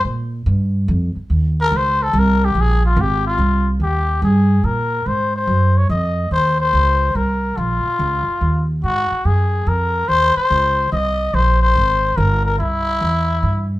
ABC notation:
X:1
M:3/4
L:1/16
Q:"Swing" 1/4=144
K:Ebmix
V:1 name="Muted trumpet"
z12 | z2 B2 c2 =A2 B2 G2 | A2 F2 G2 F4- F z | G4 A4 B4 |
c2 c4 d2 e4 | c2 c6 B4 | F8- F2 z2 | _G4 A4 B4 |
c2 c6 e4 | c2 c6 B2 B2 | =E8- E2 z2 |]
V:2 name="Upright bass" clef=bass
B,,4 G,,4 F,,2 z2 | E,,4 D,,4 C,,4 | B,,,4 A,,,4 C,,4 | E,,4 G,,4 B,,4 |
A,,4 _G,,4 F,,4 | E,,4 D,,4 C,,4 | B,,,2 z2 D,,2 z2 E,,4 | A,,2 z2 _G,,4 F,,4 |
E,,2 z2 D,,4 C,,4 | B,,,4 A,,,4 G,,,4 | C,,4 =E,,4 G,,4 |]